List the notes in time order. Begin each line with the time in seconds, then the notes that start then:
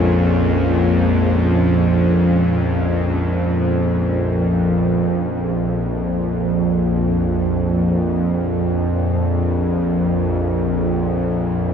Already playing: A#1 F2 A#2 G#3 C#4 F4
4.96 A#1 F2